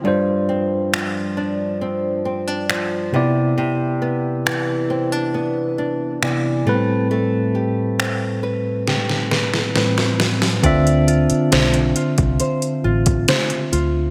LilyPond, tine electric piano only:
\new Staff \with { instrumentName = "Tine electric piano" } { \time 4/4 \key d \dorian \tempo 4 = 68 <g d' f' c''>2.~ <g d' f' c''>8 <c b e' d''>8~ | <c b e' d''>2. <c b e' d''>8 <a, g b c' b'>8~ | <a, g b c' b'>2. <a, g c' b'>4 | <d c' f' e''>1 | }